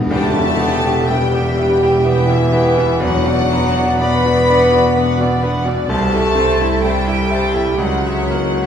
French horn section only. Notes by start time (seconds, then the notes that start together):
0.11 A3
1.10 G3
2.05 E3
3.01 F#3
4.01 B3
5.89 A3
6.83 G3
7.79 F#3